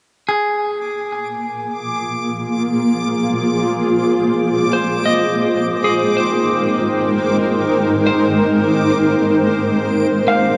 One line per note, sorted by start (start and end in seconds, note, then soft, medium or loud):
0.28 6.51 A#3 medium
0.28 4.05 G#4 soft
0.28 10.57 D6 medium
0.99 6.51 F4 medium
1.31 4.73 G#4 medium
2.28 10.57 C5 medium
2.28 6.50 D6 medium
4.71 9.16 G#3 medium
4.71 6.16 C5 soft
5.06 8.80 D#5 soft
5.17 9.17 G5 medium
5.26 10.57 A#4 medium
5.40 9.18 D#4 medium
5.84 9.61 G#4 soft
6.17 8.05 C5 soft
8.07 9.69 C5 medium
9.17 10.57 A#3 medium
9.68 10.57 F4 medium
9.75 10.57 G#4 medium
10.28 10.57 F5 medium